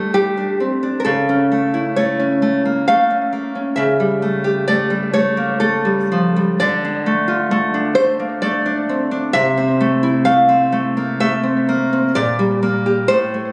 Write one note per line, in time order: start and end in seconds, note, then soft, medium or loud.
0.00 0.13 G3 soft
0.00 1.05 A3 soft
0.00 0.36 D4 soft
0.14 0.60 G3 soft
0.14 0.58 G4 medium
0.37 0.82 D4 soft
0.60 1.05 C4 soft
0.83 1.05 D4 soft
1.00 1.04 A#4 soft
1.05 2.88 C#3 medium
1.05 1.92 A4 medium
1.29 2.18 C#4 soft
1.52 1.96 A3 soft
1.74 3.11 E4 soft
1.96 2.41 A3 soft
1.96 2.85 C#5 medium
2.20 3.09 C#4 soft
2.42 2.65 A3 soft
2.65 3.31 A#3 soft
2.88 3.77 A3 medium
2.88 3.73 F5 medium
3.10 3.54 C#4 soft
3.33 3.77 A#3 soft
3.55 3.77 C#4 soft
3.76 6.56 C#3 medium
3.76 4.63 E5 medium
4.00 4.89 G3 soft
4.22 4.67 A3 soft
4.44 5.85 G4 soft
4.68 5.13 A3 soft
4.68 5.12 D5 medium
4.90 5.84 G3 soft
5.13 5.60 A3 medium
5.13 5.59 C#5 medium
5.37 6.11 A#3 soft
5.60 6.60 A3 medium
5.60 6.56 A4 medium
5.85 6.35 G3 soft
6.12 6.61 F3 soft
6.36 6.61 G3 medium
6.60 9.30 D3 medium
6.60 7.93 D5 loud
6.85 7.73 D4 soft
7.06 7.50 A3 medium
7.28 8.65 F4 medium
7.51 7.94 A3 medium
7.74 8.64 D4 soft
7.95 8.41 A3 medium
7.95 8.40 C5 medium
8.20 9.34 A#3 soft
8.42 9.34 A3 medium
8.42 9.30 D5 medium
8.66 9.10 D4 medium
8.89 9.34 C4 medium
9.11 9.34 D4 medium
9.33 12.12 C3 medium
9.33 10.21 E5 loud
9.58 10.48 C4 medium
9.81 10.25 A3 medium
10.03 11.43 E4 medium
10.25 10.71 A3 medium
10.25 11.16 F5 medium
10.49 10.97 C4 medium
10.72 11.19 A3 medium
10.97 11.67 A#3 soft
11.20 12.15 A3 medium
11.20 12.11 E5 loud
11.43 11.92 C4 medium
11.69 12.16 A#3 medium
11.93 12.16 C4 medium
12.15 13.08 A#2 medium
12.15 13.07 D5 loud
12.39 13.10 G3 medium
12.63 13.10 A#3 medium
12.86 13.10 G4 medium
13.08 13.52 A2 medium
13.08 13.52 C5 loud
13.34 13.52 A3 medium